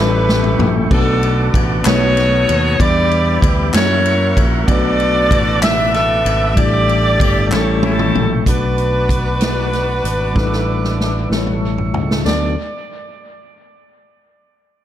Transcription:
Already playing: A1 A2 G3 A3 E4 G4 A4
0.00 C#4 A4 B4 E5 G5 C#6
0.29 snare
0.44 mid tom
0.59 A#1, floor tom
0.90 B1 B2 A3 B3 D4 F#4 A4 B4 F#5 A5 D6, kick, crash
1.23 ride bell
1.54 A1, kick, ride bell
1.84 B1 B2 A3 B3 D#4 F#4 A4 B4 C#5 D#6, snare, clap, ride bell
2.17 snare, ride bell
2.49 D#2, ride bell
2.79 E2 E3 G3 B3 D4 E4 G4 B4 D5 E5 G5 D6, kick, ride bell
3.11 ride bell
3.42 D2, kick, ride bell
3.72 F#2 A#3 C#4 E4 F#4 A#4 C#5 E5 F#5 C#6, snare, clap, ride bell
4.05 ride bell
4.37 A#1, kick, ride bell
4.64 A3 B3 D4 A4 B4 D5 A5 D6
4.68 B1 B2 F#4 B4, kick, ride bell
5.00 ride bell
5.31 A1, kick, ride bell
5.62 E5, snare, clap, ride bell
5.94 A4 E5, snare, ride bell
6.25 G#1, ride bell
6.54 A1 A2 G3 A3 D4 E4 G4 A4 D5 E5 G5, kick, ride bell
6.89 ride bell
7.20 G1 G4, kick, ride bell
7.49 A1 A2 G3 A3 C#4 E4 G4 A4 C#5, snare, clap
7.53 C#6
7.83 C#4 E4 A4, high tom
7.99 mid tom
8.15 A#1, mid tom
8.42 B1 B2 A3 D4
8.46 D4 F#4 B4 F#5 A5 D6, kick, closed hi-hat
8.78 closed hi-hat
9.09 kick, closed hi-hat
9.41 snare, closed hi-hat
9.73 snare, closed hi-hat
10.04 G#1, closed hi-hat
10.33 A1 A2 G3 C#4 E4 A4, kick
10.37 D4 A4 D5 E5, snare
10.53 snare
10.84 snare
11.00 snare
11.28 A1 A2 G3 B3 E4 C#6, snare
11.32 A4 C#5
11.47 mid tom
11.78 floor tom
11.94 C#2, floor tom
12.11 snare
12.25 D2 F#3 B3 D4 F#4 A4 D5, snare, splash

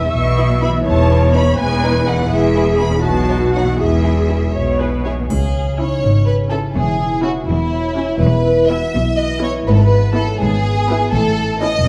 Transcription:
Already playing: E3 B3 E4 B4 E5
0.13 B1 B2 C#6
0.38 E4 B4
0.62 E4 B4 B5
0.68 E3
0.72 B3
0.77 D#4
0.82 B4 A5
0.86 E1 E2 C#5
1.11 D#4 B4
1.33 D#4 B4 B5
1.58 E1 E2 B4 G#5
1.83 D#4 B4
2.07 D#4 B4 F#5
2.13 E3
2.18 B3
2.22 E4
2.26 G#4
2.31 E1 E2 E5
2.56 E4 B4
2.80 E4 B4 B5
2.86 B2
2.90 C#4
2.95 D#4
2.99 F#4 A5
3.04 B1 B2 F#4
3.29 D#4 C#5
3.54 D#4 C#5 F#5
3.61 E3
3.66 B3
3.70 E4
3.75 G#4
3.79 E1 E2 G#4 E5
4.04 E4 G#4
4.30 E4 G#4
4.55 B1 B2 C#5
4.80 E4 G#4 B4
5.05 E4 G#4 C#5
5.29 C#2 C#3 G#4, triangle
5.54 C#4
5.78 C#4 D#4 E4 C#5 G#5
6.02 G#1 G#2 C#4
6.26 G#4 B4
6.50 C#4 E4 A4 G#5
6.75 E1 E2 E3 G#4
6.99 E4
7.23 C#4 E4 F#4 G#5
7.47 E1 E2 E4
7.73 C#5
7.96 C#4 E4 G#5
8.19 E1 E2 E3 B4
8.45 E4
8.69 B3 E4 F#4 E5 G#5
8.93 B1 B2 E4
9.18 B4 D#5
9.42 B3 E4 C#5 G#5
9.67 G#1 G#2 B4
9.75 A4
9.81 B4
9.92 B3
10.15 B3 C#4 E4 A4 B5
10.40 G#1 G#2 B3 G#4
10.65 G#4
10.89 B3 E4 B5
11.12 A1 A2 A4
11.39 A3
11.61 B3 C#4 E4 D#5 A5
11.85 E1 E2

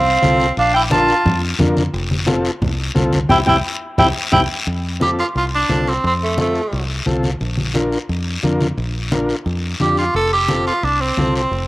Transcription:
Already playing: C2 C4 F5
0.22 C2 C4 F4 A4, high conga, short guiro
0.40 short guiro
0.57 A#1 D4 F5, high conga, long guiro
0.74 E4 G5
0.90 D4 F4 A#4 A5, high conga, short guiro
1.09 short guiro
1.25 F2, high conga, low conga, long guiro
1.59 F2 D4 F4 A#4, high conga, low conga, short guiro
1.77 high conga, short guiro
1.93 F1, high conga, long guiro
2.11 high conga
2.26 C4 F4 A4, high conga, short guiro
2.45 short guiro
2.62 C2, high conga, low conga, long guiro
2.95 C2 C4 F4 A4, high conga, short guiro
3.13 high conga, short guiro
3.29 C2 C4 E4 G4 G5, low conga, long guiro
3.46 C2 C4 E4 G4 G5, low conga, long guiro
3.98 C2 C4 E4 G4 G5, low conga, long guiro
4.32 C2 C4 E4 G4 G5, low conga
4.67 F2, high conga, long guiro
5.00 C4 F4 G4 A4, high conga, short guiro
5.19 F4, short guiro
5.35 C2 F4, high conga, long guiro
5.55 D4
5.69 C2 C4 F4 A4, high conga, short guiro
5.87 C4, short guiro
6.04 F2 C4, high conga, long guiro
6.23 A3
6.37 A3 C4 F4 A4, high conga, short guiro
6.55 short guiro
6.72 C2, high conga, long guiro
7.06 C2 C4 F4 A4, high conga, short guiro
7.23 high conga, short guiro
7.40 A#1, high conga, long guiro
7.57 high conga
7.74 D4 F4 A#4, high conga, short guiro
7.92 short guiro
8.09 F2, high conga, long guiro
8.43 F2 D4 F4 A#4, high conga, short guiro
8.61 high conga, short guiro
8.77 A#1, high conga, long guiro
9.12 D4 F4 A#4, high conga, short guiro
9.29 short guiro
9.46 F2, high conga, long guiro
9.80 F2 D4 F4 G4, high conga, short guiro
9.97 F4, short guiro
10.14 F1 A4, high conga, long guiro
10.33 G4
10.49 C4 F4 A4, high conga, short guiro
10.67 F4, short guiro
10.83 C2 D4, high conga, long guiro
11.01 C4
11.17 C2 C4 F4 A4, high conga, short guiro
11.36 C4, short guiro
11.51 F1, high conga, long guiro

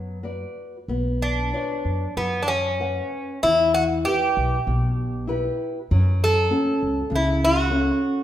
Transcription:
Already playing: F#2 F#3 B3
0.23 F#4 B4 D5
0.88 B1 B3
1.22 D4
1.53 B4 C#5 D5
1.85 F#2
2.17 F#2 F#3 B3
2.43 D4
2.48 C#4
2.80 B4 C#5 F#5
3.43 E2 E3 E4
3.74 F#4
4.05 E4 G4 B4
4.37 B1
4.67 B1 B2
5.27 E4 G4 B4
5.91 F#2 F#3
6.24 A4
6.50 C#4 F#4 A4
6.83 C#2
7.10 C#2 C#3
7.15 E4
7.45 F#4
7.70 C#4 F#4 A4

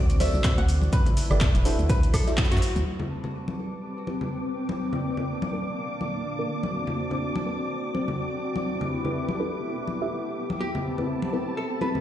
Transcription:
Already playing: D2 C4 D4 F#4 A4 C5 D5
0.10 closed hi-hat, shaker
0.20 D4 F#4 A4 C5 D5 E5, open hi-hat, high conga, shaker
0.33 C2, low conga, shaker
0.44 kick, snare, clap, closed hi-hat, shaker
0.58 D2 F#5, closed hi-hat
0.68 open hi-hat, shaker
0.82 high conga, shaker
0.93 A3 E4 B4, kick, closed hi-hat, shaker
1.06 closed hi-hat, low conga, shaker
1.17 open hi-hat, shaker
1.31 G1 E4 G4 A4 B4 D5, low conga, high woodblock, shaker
1.41 kick, snare, clap, closed hi-hat, shaker
1.55 E1, closed hi-hat, high conga, shaker
1.65 D4 E4 F#4 A4 C5, open hi-hat, shaker
1.79 D2, closed hi-hat, shaker
1.89 F#3 B4 C5, kick, closed hi-hat, shaker
2.03 closed hi-hat, shaker
2.13 A4, kick, open hi-hat, high conga, high woodblock, shaker
2.27 D4 E4 F#4 A4 E5, snare, closed hi-hat, shaker
2.37 kick, snare, clap, closed hi-hat, shaker
2.45 snare, shaker
2.52 F#2 F#4, snare, closed hi-hat, shaker
2.57 snare, shaker
2.62 open hi-hat, shaker
2.76 D2, closed hi-hat, high conga, shaker
2.86 G3 C4 B4 A5 D6
2.95 B4
3.00 A5, low conga
3.24 C4 E4 G4 A4 B4, low conga
3.46 G5, high conga
3.59 C4 E4 G4 A4 B4
4.07 C4 E4 G4 A4 B4, high conga
4.21 low conga
4.69 high conga
4.80 A#3 D4 D5
4.89 F5, low conga
5.01 A#3
5.17 A#3 D4 F4 A4 A#4, low conga
5.42 high conga
5.52 A#3 D4 F4 A4 A#4
6.01 A#3 D4 F4 A4 A#4, high conga
6.39 A#3 D4 F4 A4 A#4
6.49 C4 F#4
6.63 F#4, high conga
6.76 D5
6.87 low conga
7.11 C4 D4 F#4 A4 C5, low conga
7.36 high conga
7.46 C4 D4 F#4 A4 B4
7.94 C4 D4 F#4 A4 C5, high conga
8.08 low conga
8.56 high conga
8.67 A3 B3 E4 G4 B4
8.81 low conga
9.01 G4
9.05 D4 E4 G4 A4 B4, low conga
9.22 E5
9.29 high conga
9.39 D4 E4 G4 A4 B4
9.87 high conga
10.02 D4 E4 G4 A4 E5
10.50 high conga
10.60 A3 C4 G4 A5 B5
10.75 low conga
10.82 A4
10.88 B5
10.96 C4 E4 G4 A4 B4 G5, low conga
11.22 high conga
11.33 C4 E4 G4 A4 B4
11.57 A4
11.81 C4 E4 G4 A4 B4, high conga
11.95 low conga

